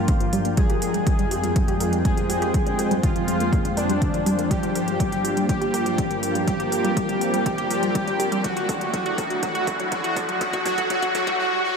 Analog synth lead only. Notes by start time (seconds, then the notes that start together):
Already playing: F4
0.57 G#4
2.05 G#4
3.03 F4
3.77 D4
4.51 G4
5.49 G4
6.48 G4
7.46 G4
8.44 F#4
8.93 F#4
9.43 F#4
9.92 F#4
10.41 F#4
10.66 F#4
10.90 F#4
11.15 F#4
11.39 F#4
11.64 F#4